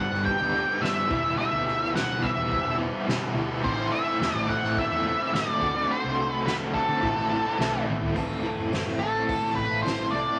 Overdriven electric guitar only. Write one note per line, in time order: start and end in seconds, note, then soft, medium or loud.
0.00 0.25 G2 medium
0.00 0.26 D3 medium
0.00 0.13 G3 medium
0.00 0.11 B3 medium
0.00 0.10 D4 medium
0.00 0.10 G4 medium
0.11 0.42 G3 medium
0.11 0.40 B3 medium
0.11 0.39 D4 medium
0.11 0.39 G4 medium
0.40 0.53 G3 medium
0.40 0.53 B3 soft
0.40 0.54 D4 medium
0.40 0.55 G4 medium
0.53 0.69 G3 medium
0.53 0.67 B3 medium
0.53 0.66 D4 medium
0.53 0.66 G4 medium
0.66 0.81 G3 medium
0.66 0.81 B3 medium
0.66 0.81 D4 medium
0.66 0.82 G4 medium
0.80 1.08 G2 medium
0.80 1.08 D3 medium
0.80 1.09 G3 medium
0.80 1.09 B3 medium
0.80 1.09 D4 loud
0.80 1.10 G4 medium
1.08 1.35 E2 medium
1.08 1.36 B2 medium
1.08 1.24 E3 medium
1.08 1.24 G3 medium
1.08 1.22 B3 medium
1.08 1.22 E4 medium
1.22 1.37 E3 medium
1.22 1.38 G3 medium
1.22 1.38 B3 medium
1.22 1.39 E4 medium
1.36 1.80 E2 medium
1.36 1.80 B2 medium
1.36 1.53 E3 medium
1.36 1.53 G3 medium
1.36 1.51 B3 medium
1.36 1.51 E4 medium
1.51 1.81 E3 medium
1.51 1.80 G3 medium
1.51 1.79 B3 medium
1.51 1.78 E4 medium
1.79 1.93 E3 medium
1.79 1.95 G3 medium
1.79 1.94 B3 medium
1.79 1.95 E4 medium
1.92 2.50 E2 medium
1.92 2.51 B2 medium
1.92 2.19 E3 loud
1.92 2.20 G3 medium
1.92 2.21 B3 medium
1.92 2.22 E4 loud
2.20 2.37 E3 medium
2.20 2.36 G3 medium
2.20 2.36 B3 medium
2.20 2.35 E4 medium
2.36 2.65 E3 medium
2.36 2.65 G3 medium
2.36 2.64 B3 medium
2.36 2.63 E4 medium
2.64 2.77 E3 medium
2.64 2.78 G3 medium
2.64 2.79 B3 medium
2.64 2.80 E4 medium
2.78 2.94 E3 medium
2.78 2.94 G3 medium
2.78 2.93 B3 medium
2.78 2.92 E4 medium
2.93 3.06 E3 medium
2.93 3.07 G3 medium
2.93 3.07 B3 medium
2.93 3.08 E4 medium
3.06 3.62 E2 medium
3.06 3.62 B2 medium
3.06 3.33 E3 medium
3.06 3.34 G3 medium
3.06 3.35 B3 medium
3.06 3.36 E4 medium
3.34 3.50 E3 medium
3.34 3.50 G3 medium
3.34 3.48 B3 medium
3.34 3.47 E4 medium
3.49 3.62 E3 medium
3.49 3.63 G3 medium
3.49 3.62 B3 medium
3.49 3.62 E4 medium
3.63 4.06 A2 medium
3.63 4.06 E3 medium
3.63 3.79 A3 loud
3.63 3.78 C4 medium
3.63 3.75 E4 loud
3.76 4.07 A3 medium
3.76 4.06 C4 medium
3.76 4.03 E4 medium
4.05 4.20 A3 medium
4.05 4.21 C4 medium
4.05 4.20 E4 medium
4.19 4.76 A2 medium
4.19 4.46 E3 medium
4.19 4.49 A3 loud
4.19 4.49 C4 medium
4.19 4.49 E4 loud
4.47 4.90 E3 medium
4.47 4.64 A3 medium
4.47 4.63 C4 medium
4.47 4.61 E4 medium
4.62 4.93 A3 soft
4.62 4.91 C4 medium
4.62 4.89 E4 medium
4.90 5.05 A3 medium
4.90 5.06 C4 medium
4.90 5.06 E4 medium
5.05 5.32 E3 medium
5.05 5.21 A3 medium
5.05 5.20 C4 medium
5.05 5.18 E4 medium
5.19 5.34 A3 medium
5.19 5.34 C4 medium
5.19 5.34 E4 medium
5.33 5.60 A2 medium
5.33 5.60 E3 medium
5.33 5.61 A3 medium
5.33 5.62 C4 medium
5.33 5.61 E4 medium
5.61 5.87 D3 medium
5.61 5.76 A3 medium
5.61 5.75 C4 medium
5.61 5.73 F#4 medium
5.75 5.88 A3 medium
5.75 5.89 C4 medium
5.75 5.90 F#4 medium
5.88 6.31 D3 medium
5.88 6.04 A3 medium
5.88 6.03 C4 medium
5.88 6.01 F#4 medium
6.02 6.32 A3 medium
6.02 6.31 C4 medium
6.02 6.29 F#4 medium
6.31 6.45 A3 medium
6.31 6.46 C4 medium
6.31 6.46 F#4 medium
6.44 6.72 D3 loud
6.44 6.73 A3 medium
6.44 6.74 C4 medium
6.44 6.75 F#4 loud
6.73 7.00 D3 medium
6.73 6.89 A3 medium
6.73 6.88 C4 medium
6.73 6.86 F#4 medium
6.87 7.02 A3 medium
6.87 7.01 C4 medium
6.87 7.00 F#4 medium
7.01 7.44 A2 medium
7.01 7.29 E3 medium
7.01 7.17 A3 loud
7.01 7.16 C4 medium
7.01 7.15 E4 loud
7.16 7.30 A3 medium
7.16 7.31 C4 medium
7.16 7.31 E4 medium
7.30 7.58 E3 medium
7.30 7.46 A3 medium
7.30 7.45 C4 medium
7.30 7.43 E4 medium
7.44 7.59 A3 medium
7.44 7.59 C4 medium
7.44 7.60 E4 medium
7.58 8.13 A2 medium
7.58 7.85 E3 medium
7.58 7.86 A3 medium
7.58 7.87 C4 medium
7.58 7.88 E4 medium
7.86 8.13 E3 medium
7.86 8.03 A3 medium
7.86 8.02 C4 medium
7.86 8.00 E4 medium
8.02 8.15 A3 medium
8.02 8.15 C4 medium
8.02 8.14 E4 medium
8.15 8.71 A2 medium
8.15 8.43 E3 medium
8.15 8.43 C4 medium
8.15 8.44 E4 medium
8.15 8.46 A4 medium
8.43 8.72 E3 medium
8.43 8.60 C4 medium
8.43 8.58 E4 medium
8.43 8.57 A4 medium
8.57 8.73 C4 medium
8.57 8.74 E4 medium
8.57 8.74 A4 medium
8.72 9.83 A2 medium
8.72 8.99 E3 medium
8.72 8.88 C4 medium
8.72 8.87 E4 medium
8.72 8.85 A4 medium
8.85 9.00 C4 medium
8.85 9.01 E4 medium
8.85 9.02 A4 medium
9.00 9.84 E3 medium
9.00 9.16 C4 medium
9.00 9.15 E4 medium
9.00 9.13 A4 medium
9.14 9.44 C4 medium
9.14 9.43 E4 medium
9.14 9.41 A4 medium
9.42 9.72 C4 soft
9.42 9.71 E4 medium
9.42 9.69 A4 medium
9.69 9.85 C4 medium
9.69 9.86 E4 medium
9.69 9.86 A4 medium
9.84 10.39 A2 medium
9.84 10.12 E3 medium
9.84 10.13 C4 medium
9.84 10.14 E4 medium
9.84 10.14 A4 medium
10.12 10.39 E3 medium
10.12 10.29 C4 medium
10.12 10.28 E4 medium
10.12 10.26 A4 medium
10.27 10.39 C4 medium
10.27 10.39 E4 medium
10.27 10.39 A4 medium